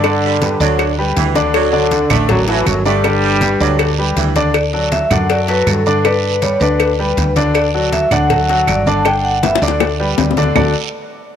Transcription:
Already playing: G2 D3 D4
0.04 D3 D4 D5, cowbell, high conga, long guiro, claves
0.23 G3, high conga
0.41 G3 G4 B4, cowbell, high conga, short guiro
0.60 D2 D3 F#3 D4 D5, short guiro
0.79 cowbell, high conga, long guiro, claves
0.98 G3 G4 B4, high conga
1.16 D2 E3, cowbell, high conga, short guiro
1.35 D3 D4 D5, cowbell, high conga, short guiro
1.54 D3 F#3 D4, cowbell, high conga, long guiro, claves
1.72 D3 D4 D5, high conga
1.91 cowbell, high conga, short guiro
2.10 A1 D3 A3 D4 D5, cowbell, high conga, low conga, short guiro, claves
2.29 F#2 F#3, cowbell, high conga, low conga, long guiro
2.48 E3 F#3 E4 F#4 A4, cowbell, high conga
2.66 G1 F#2 F#3, cowbell, high conga, short guiro, claves
2.85 G2 D3 G3 A3 D4 D5, short guiro
3.04 D3 D4 D5, cowbell, long guiro, claves
3.23 G3, high conga
3.41 G3 G4 B4, cowbell, high conga, short guiro
3.60 D2 D3 F#3 D4 D5, high conga, short guiro
3.79 cowbell, high conga, long guiro, claves
3.98 G3 G4 B4, high conga
4.16 D2 E3, cowbell, high conga, short guiro
4.36 D3 D4 D5, cowbell, high conga, short guiro
4.54 D5, cowbell, high conga, long guiro, claves
4.73 F#3 F#4 A4 D5, high conga
4.92 E5, cowbell, high conga, short guiro
5.11 F#2 D3 D4 D5 F#5, cowbell, high conga, low conga, short guiro, claves
5.29 F#3 F#4 A4 D5, cowbell, high conga, long guiro
5.48 F#3 F#4 A4 B4, cowbell, high conga
5.67 G2 A4, cowbell, high conga, short guiro, claves
5.86 D3 D4 D5, short guiro
6.05 D3 D4 B4 D5, cowbell, high conga, long guiro, claves
6.24 high conga
6.42 G3 G4 B4 C#5, cowbell, high conga, short guiro
6.60 D2 D3 D4 B4 D5, short guiro
6.80 cowbell, high conga, long guiro, claves
6.99 G3 G4 B4, high conga
7.17 D2, cowbell, high conga, short guiro
7.36 D3 D4 D5, cowbell, high conga, short guiro
7.55 D5, cowbell, long guiro, claves
7.74 F#3 F#4 A4, high conga
7.92 E5, cowbell, high conga, short guiro
8.11 D2 D3 D4 D5 F#5, cowbell, high conga, low conga, short guiro, claves
8.30 F#3 F#4 A4, cowbell, high conga, low conga, long guiro
8.48 F#3 F#4 A4, cowbell, high conga
8.67 G1 D5, cowbell, high conga, short guiro, claves
8.86 D3 D4 D5 A5, high conga, short guiro
9.05 D3 D4 D5 G5, cowbell, long guiro, claves
9.24 F#5, high conga
9.43 G3 G4 B4 E5, cowbell, high bongo, high conga, short guiro
9.55 high bongo
9.62 D2 D3 D4 D5, short guiro
9.68 high bongo
9.80 cowbell, high bongo, long guiro, claves
10.00 G3 G4 B4, high conga
10.18 D2, cowbell, low bongo, high conga, short guiro
10.31 low bongo
10.37 D3 D4 D5, cowbell, high conga, short guiro
10.43 low bongo
10.55 D2 D3 A3 D4 F#4 A4 D5, low bongo, low conga, long guiro, claves

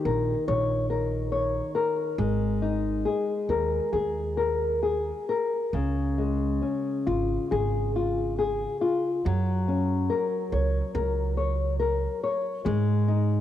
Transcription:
Already playing: D#3
0.05 A#1 A#4
0.48 A#1 C#5
0.90 A#4
1.32 C#5
1.75 A#4
2.18 G#1 G#3
2.62 D#4
3.05 G#4
3.49 D#2 A#4
3.93 D#2 G#4
4.37 A#4
4.83 G#4
5.29 A#4
5.73 C#2 C#3
6.18 G#3
6.62 C#4
7.07 G#1 F4
7.51 G#1 G#4
7.96 F4
8.39 G#4
8.81 F4
9.25 F#2 F#3
9.68 C#4
10.10 A#4
10.52 C#2 C#5
10.95 C#2 A#4
11.37 C#5
11.80 A#4
12.23 C#5
12.65 G#2 G#3
13.08 D#4

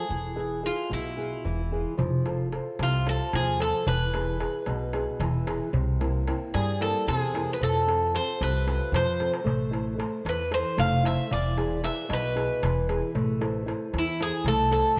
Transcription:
Already playing: G#4
0.09 E1 E3
0.36 E4 G#4 B4
0.63 E4 F4 G#4 B4
0.90 B1 B2 E4
1.17 E4 G#4 B4
1.45 E1 E3
1.72 E4 G#4 B4
1.98 F1 F3, darbuka dum
2.26 F4 A4 C5, darbuka tek
2.39 darbuka tek
2.52 F4 A4 C5, darbuka tek
2.79 C2 C3 F4, darbuka tek
3.06 F4 A4 C5, darbuka tek
3.33 D#2 F3 G#4, darbuka tek, darbuka dum
3.47 darbuka tek
3.60 F4 A4 C5, darbuka tek
3.74 darbuka tek
3.87 E1 E3 B4, darbuka dum
4.14 E4 G#4 B4, darbuka tek
4.26 darbuka tek
4.40 E4 G#4 B4, darbuka tek
4.66 B1 B2, darbuka tek
4.93 E4 G#4 B4, darbuka tek
5.20 E1 E3, darbuka tek, darbuka dum
5.34 darbuka tek
5.46 E4 G#4 B4, darbuka tek
5.61 darbuka tek
5.73 C2 C3, darbuka dum
6.00 A#3 C4 E4, darbuka tek
6.15 darbuka tek
6.27 A#3 C4 E4, darbuka tek
6.54 G2 G3 G#4, darbuka tek
6.80 A#3 C4 E4 A4, darbuka tek
7.08 E2 C3 G#4, darbuka tek, darbuka dum
7.22 darbuka tek
7.34 A#3 C4 E4, darbuka tek
7.49 B4, darbuka tek
7.61 F2 F3 A4, darbuka dum
7.75 darbuka tek
7.87 C4 F4 A4, darbuka tek
8.02 darbuka tek
8.14 C4 F4 A4 C5, darbuka tek
8.41 C2 C3 B4, darbuka tek
8.66 C4 F4 A4, darbuka tek
8.81 darbuka tek
8.92 F2 F3 C5, darbuka tek, darbuka dum
9.07 darbuka dum
9.20 C4 F4 A4, darbuka tek
9.34 darbuka tek
9.44 A1 A3, darbuka dum
9.71 E4 A4 C5, darbuka tek
9.86 darbuka tek
9.98 E4 A4 C5, darbuka tek
10.25 E2 E3 B4, darbuka tek
10.51 E4 A4 C5, darbuka tek
10.77 F1 A3 F5, darbuka tek, darbuka dum
10.92 darbuka tek
11.04 E4 A4 C5 E5, darbuka tek
11.31 E1 E3 D5, darbuka dum
11.57 E4 G#4 B4, darbuka tek
11.70 darbuka tek
11.84 E4 G#4 B4 E5, darbuka tek
12.09 B1 B2, darbuka tek
12.13 B4
12.36 E4 G#4 B4, darbuka tek
12.62 E1 E3, darbuka tek, darbuka dum
12.76 darbuka tek
12.88 E4 G#4 B4, darbuka tek
13.02 darbuka tek
13.15 A1 A3, darbuka dum
13.41 E4 A4 C5, darbuka tek
13.55 darbuka tek
13.66 E4 A4 C5, darbuka tek
13.93 E2 E3, darbuka tek
13.98 E4
14.20 E4 G#4 A4 C5, darbuka tek
14.44 C2 A3 A4, darbuka tek, darbuka dum
14.59 darbuka tek
14.71 E4 A4 C5, darbuka tek
14.84 darbuka tek

